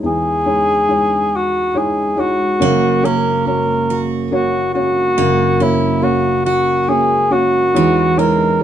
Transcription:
Already playing: felt piano G#3 D#4 E4 C#5 D#5
0.03 felt piano E2 E3, cor anglais G#4
0.45 felt piano G#3 D#4 E4 C#5
0.88 felt piano G#3 D#4 E4 C#5
1.36 cor anglais F#4
1.74 felt piano G#3 D#4 E4 C#5, cor anglais G#4
2.16 felt piano G#3 D#4 E4 C#5, cor anglais F#4
2.59 felt piano F#1 F#2 A#3 C#4 F#4 C#5, steel-string acoustic guitar A#3
3.02 felt piano A#3 C#4 F#4 C#5, steel-string acoustic guitar C#4, cor anglais A#4
3.45 felt piano A#3 C#4 F#4 C#5, cor anglais A#4
3.90 steel-string acoustic guitar F#4
4.31 felt piano A#3 C#4 F#4 C#5, cor anglais F#4
4.73 felt piano A#3 C#4 F#4 C#5, cor anglais F#4
5.17 felt piano F#1 F#2, steel-string acoustic guitar A#3
5.60 felt piano A#3 C#4 F#4 C#5, steel-string acoustic guitar C#4, cor anglais E4
6.02 felt piano A#3 C#4 F#4 C#5, cor anglais F#4
6.45 cor anglais F#4, steel-string acoustic guitar F#4
6.88 felt piano A#3 C#4 F#4 C#5, cor anglais G#4
7.30 felt piano A#3 C#4 F#4 C#5, cor anglais F#4
7.74 felt piano E2 E3 G#3 D#4 E4 C#5, steel-string acoustic guitar E3
8.16 felt piano G#3 D#4 E4 C#5, steel-string acoustic guitar G#3, cor anglais A#4
8.60 felt piano G#3 D#4

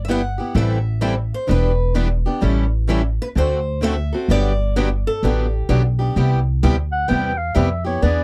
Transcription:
Already playing: upright bass G1
0.05 steel-string acoustic guitar G3 E5
0.09 steel-string acoustic guitar B3 E4 G4 F#5
0.38 steel-string acoustic guitar B3 E4 G4
0.55 upright bass A1, steel-string acoustic guitar E3 G3 C4 E4 A4 E5
1.01 steel-string acoustic guitar E3 G3 C4 E4 A4
1.34 steel-string acoustic guitar C5
1.48 upright bass E1, steel-string acoustic guitar E3 G3 B3 D4 E4 G4 B4
1.95 steel-string acoustic guitar E3 G3 B3 D4 E4 G4 B4
2.26 steel-string acoustic guitar B3 D4 G4
2.42 upright bass A1, steel-string acoustic guitar E3 G3 C#4 E4 A4
2.89 steel-string acoustic guitar E3 G3 C#4 E4 A4
3.22 steel-string acoustic guitar B4
3.36 upright bass D2, steel-string acoustic guitar D3 A3 C4 F#4 A4 C5
3.83 steel-string acoustic guitar D3 A3 C4 F#4 A4 E5
4.13 steel-string acoustic guitar C4 F#4 A4
4.28 upright bass G1, steel-string acoustic guitar D3 F#3 B3 D4 G4 D5
4.76 steel-string acoustic guitar D3 F#3 B3 D4 G4
5.07 steel-string acoustic guitar A4
5.23 upright bass A1, steel-string acoustic guitar D3 F#3 B3 D4 G4
5.69 upright bass B1, steel-string acoustic guitar D3 F#3 B3 D4 G4
5.99 steel-string acoustic guitar B3 D4 G4
6.16 upright bass C2, steel-string acoustic guitar C3 G3 B3 E4 G4
6.63 upright bass D2, steel-string acoustic guitar C3 G3 B3 E4 G4
6.92 clarinet F#5
7.08 upright bass E2, steel-string acoustic guitar C3 G3 B3 E4 G4, clarinet G5
7.38 clarinet F5
7.55 upright bass F2, steel-string acoustic guitar C3 G3 B3 E4 G4, clarinet E5
7.84 steel-string acoustic guitar B3 E4 G4, clarinet C#5
8.02 upright bass E2, steel-string acoustic guitar E3 B3 D4 G#4 B4, clarinet D5

